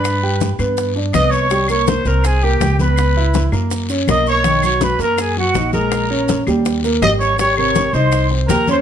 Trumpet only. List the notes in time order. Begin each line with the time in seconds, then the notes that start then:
Already playing: B4
1.14 D#5
1.31 C#5
1.70 C#5
1.87 C5
2.07 A#4
2.26 G#4
2.43 G4
2.81 B4
4.10 D#5
4.29 C#5
4.65 C#5
4.84 B4
5.02 A#4
5.20 G#4
5.38 F#4
5.74 A#4
7.02 D#5
7.20 C#5
7.39 C#5
7.57 C#5
7.94 C5
8.47 A#4
8.72 C5